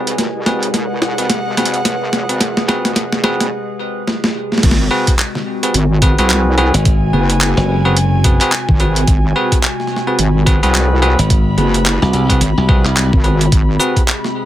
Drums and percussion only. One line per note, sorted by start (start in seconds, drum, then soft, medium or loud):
0.07 closed hi-hat medium
0.18 snare medium
0.18 closed hi-hat medium
0.46 snare medium
0.46 closed hi-hat soft
0.63 closed hi-hat medium
0.74 snare medium
0.74 closed hi-hat medium
1.02 snare medium
1.18 closed hi-hat medium
1.30 snare medium
1.30 closed hi-hat medium
1.57 snare medium
1.57 closed hi-hat medium
1.65 closed hi-hat medium
1.74 closed hi-hat medium
1.85 snare medium
1.85 closed hi-hat medium
2.13 snare medium
2.13 closed hi-hat soft
2.29 closed hi-hat medium
2.41 snare medium
2.41 closed hi-hat medium
2.57 snare medium
2.69 snare loud
2.69 closed hi-hat soft
2.85 snare medium
2.85 closed hi-hat medium
2.96 snare loud
2.96 closed hi-hat medium
3.12 snare medium
3.24 snare loud
3.40 snare medium
3.40 closed hi-hat medium
4.07 snare medium
4.24 snare medium
4.52 snare soft
4.58 snare soft
4.63 kick loud
4.63 snare medium
4.63 closed hi-hat medium
4.63 crash loud
4.71 snare medium
5.07 kick medium
5.07 closed hi-hat medium
5.19 clap loud
5.19 closed hi-hat medium
5.35 snare soft
5.63 closed hi-hat medium
5.74 closed hi-hat medium
6.02 kick loud
6.02 closed hi-hat medium
6.18 closed hi-hat medium
6.30 clap loud
6.30 closed hi-hat medium
6.58 closed hi-hat soft
6.74 closed hi-hat medium
6.85 kick loud
6.85 closed hi-hat medium
7.30 closed hi-hat medium
7.41 clap loud
7.41 closed hi-hat medium
7.57 snare soft
7.97 closed hi-hat medium
8.24 kick loud
8.24 closed hi-hat medium
8.41 clap soft
8.41 closed hi-hat medium
8.52 clap loud
8.52 closed hi-hat medium
8.69 kick loud
8.80 closed hi-hat soft
8.96 closed hi-hat medium
9.07 kick loud
9.07 closed hi-hat medium
9.52 kick medium
9.52 closed hi-hat medium
9.63 clap loud
9.63 closed hi-hat medium
9.80 snare soft
9.87 snare soft
9.96 snare soft
10.19 closed hi-hat medium
10.47 kick loud
10.47 closed hi-hat medium
10.63 closed hi-hat medium
10.75 clap loud
10.75 closed hi-hat medium
11.02 closed hi-hat soft
11.19 closed hi-hat medium
11.30 kick loud
11.30 closed hi-hat medium
11.58 closed hi-hat soft
11.74 closed hi-hat medium
11.86 clap loud
11.86 closed hi-hat medium
12.02 snare soft
12.13 closed hi-hat soft
12.30 kick medium
12.30 closed hi-hat medium
12.41 closed hi-hat medium
12.69 kick loud
12.85 clap soft
12.97 clap loud
12.97 closed hi-hat medium
13.13 kick loud
13.24 closed hi-hat soft
13.41 closed hi-hat medium
13.52 kick loud
13.52 closed hi-hat medium
13.80 shaker medium
13.96 kick medium
13.96 closed hi-hat soft
14.08 clap loud
14.08 closed hi-hat medium
14.24 snare soft